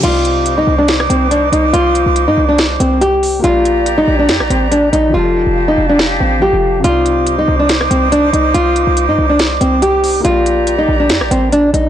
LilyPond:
<<
  \new Staff \with { instrumentName = "Flute section" } { \time 4/4 \key c \dorian \tempo 4 = 141 <ees' c'' d'''>1~ | <ees' c'' d'''>1 | <g' d'' bes''>1 | <g' f'' a''>1 |
<ees' c'' d'''>1~ | <ees' c'' d'''>1 | <g' d'' bes''>1 | }
  \new Staff \with { instrumentName = "Felt piano" } { \time 4/4 \key c \dorian <c c' ees' d''>1~ | <c c' ees' d''>1 | <bes f' g' d''>1 | <f f' g' a'>2. <f f' g' a'>4 |
<c c' ees' d''>1~ | <c c' ees' d''>1 | <bes f' g' d''>1 | }
  \new Staff \with { instrumentName = "Nylon-string guitar" } { \time 4/4 \key c \dorian f'4~ f'16 ees'8 d'16 r8 c'8 d'8 ees'8 | f'4~ f'16 ees'8 d'16 r8 c'8 g'4 | f'4~ f'16 ees'8 d'16 r8 c'8 d'8 ees'8 | f'4~ f'16 ees'8 d'16 r8 c'8 g'4 |
f'4~ f'16 ees'8 d'16 r8 c'8 d'8 ees'8 | f'4~ f'16 ees'8 d'16 r8 c'8 g'4 | f'4~ f'16 ees'8 d'16 r8 c'8 d'8 ees'8 | }
  \new Staff \with { instrumentName = "808-style bass" } { \clef bass \time 4/4 \key c \dorian c,4. c,4 c,4 c,8 | c,8. c,8 g,16 c,4 c,4. | bes,,4. bes,,8 f,16 bes,,16 a,,4 bes,,8 | f,,8. f,,8. f,,4 a,,8. f,,8. |
c,4. c,4 c,4 c,8 | c,8. c,8 g,16 c,4 c,4. | bes,,4. bes,,8 f,16 bes,,16 a,,4 bes,,8 | }
  \new DrumStaff \with { instrumentName = "Drums" } \drummode { \time 4/4 <cymc hh>8 hh8 hh4 <hh sn>16 ss16 hh8 hh8 hh8 | hh8 hh8 hh4 <hh sn>8 hh8 hh8 hho8 | hh8 hh8 hh4 <hh sn>16 ss16 hh8 hh8 hh8 | r4 r4 sn4 r4 |
hh8 hh8 hh4 <hh sn>16 ss16 hh8 hh8 hh8 | hh8 hh8 hh4 <hh sn>8 hh8 hh8 hho8 | hh8 hh8 hh4 <hh sn>16 ss16 hh8 hh8 hh8 | }
>>